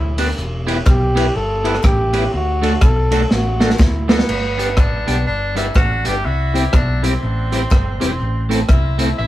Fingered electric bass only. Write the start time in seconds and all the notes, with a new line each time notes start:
Already playing: D2
0.38 E1
0.87 B1
1.36 G1
1.84 A1
2.34 D2
2.82 B1
3.31 A1
3.80 D2
4.29 G1
4.78 A1
5.08 B1
5.28 G1
5.76 A1
6.06 G1
6.25 C2
6.74 B1
7.23 A1
7.72 G1
8.02 E1
8.21 A1
8.70 C2
9.19 A1